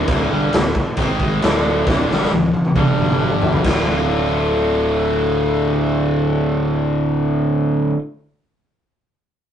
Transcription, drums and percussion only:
0.08 kick loud
0.08 crash medium
0.53 snare loud
0.53 crash medium
0.75 kick medium
0.97 kick medium
0.97 crash medium
1.20 kick medium
1.42 snare loud
1.42 crash medium
1.87 kick loud
1.87 snare medium
2.11 snare medium
2.23 snare medium
2.31 high tom medium
2.54 high tom medium
2.65 mid tom medium
2.75 kick medium
2.75 mid tom medium
2.98 mid tom medium
3.09 mid tom medium
3.20 mid tom medium
3.42 floor tom loud
3.53 floor tom loud
3.64 kick loud
3.64 snare loud
3.64 crash medium

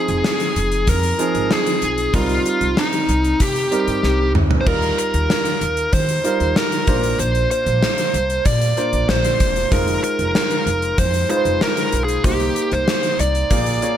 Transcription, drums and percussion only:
0.08 closed hi-hat soft
0.24 snare loud
0.40 closed hi-hat soft
0.56 closed hi-hat medium
0.72 closed hi-hat soft
0.87 kick medium
0.87 closed hi-hat medium
1.03 closed hi-hat medium
1.19 closed hi-hat medium
1.35 closed hi-hat soft
1.51 snare loud
1.66 closed hi-hat medium
1.82 closed hi-hat medium
1.98 closed hi-hat medium
2.14 kick loud
2.14 closed hi-hat medium
2.29 closed hi-hat soft
2.46 closed hi-hat medium
2.61 closed hi-hat soft
2.77 snare loud
2.93 closed hi-hat soft
3.09 closed hi-hat medium
3.24 closed hi-hat medium
3.40 kick medium
3.40 closed hi-hat medium
3.56 closed hi-hat medium
3.72 closed hi-hat medium
3.88 closed hi-hat soft
4.03 snare medium
4.35 mid tom medium
4.51 floor tom medium
4.67 kick loud
4.67 crash medium
4.82 closed hi-hat soft
4.98 closed hi-hat medium
5.14 closed hi-hat medium
5.30 snare loud
5.45 closed hi-hat soft
5.61 closed hi-hat medium
5.77 closed hi-hat medium
5.93 kick medium
5.93 closed hi-hat medium
6.09 closed hi-hat medium
6.24 closed hi-hat medium
6.40 closed hi-hat soft
6.56 snare loud
6.72 closed hi-hat medium
6.87 kick medium
6.87 closed hi-hat medium
7.03 closed hi-hat medium
7.19 closed hi-hat medium
7.35 closed hi-hat soft
7.51 closed hi-hat medium
7.66 closed hi-hat soft
7.83 snare medium
7.98 closed hi-hat medium
8.14 closed hi-hat medium
8.30 closed hi-hat medium
8.45 kick medium
8.45 closed hi-hat medium
8.61 closed hi-hat medium
8.77 closed hi-hat medium
8.93 closed hi-hat soft
9.09 snare loud
9.24 closed hi-hat medium
9.40 kick medium
9.40 closed hi-hat medium
9.56 closed hi-hat medium
9.72 kick loud
9.72 closed hi-hat medium
9.87 closed hi-hat soft
10.04 closed hi-hat medium
10.19 closed hi-hat soft
10.35 snare loud
10.50 closed hi-hat soft
10.67 closed hi-hat medium
10.82 closed hi-hat soft
10.98 kick medium
10.98 closed hi-hat medium
11.14 closed hi-hat medium
11.30 closed hi-hat medium
11.45 closed hi-hat soft
11.61 snare loud
11.77 closed hi-hat medium
11.92 closed hi-hat medium
12.08 closed hi-hat medium
12.24 kick loud
12.24 closed hi-hat medium
12.40 closed hi-hat soft
12.56 closed hi-hat medium
12.72 closed hi-hat soft
12.88 snare medium
13.03 closed hi-hat soft
13.19 closed hi-hat medium
13.35 closed hi-hat medium
13.50 kick medium
13.50 closed hi-hat medium
13.66 closed hi-hat medium
13.82 closed hi-hat medium

